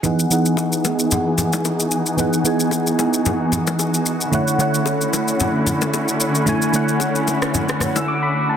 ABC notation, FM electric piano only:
X:1
M:4/4
L:1/16
Q:"Swing 16ths" 1/4=112
K:E
V:1 name="FM electric piano"
[E,B,DGf]2 [E,B,DGf]6 z8 | [E,B,DGf]2 [E,B,DGg]6 z8 | [=D,A,Ecf]2 [D,A,Ecf]6 z8 | [=D,A,Ecg]2 [D,A,Ecf]6 z3 e' =d' b2 a |]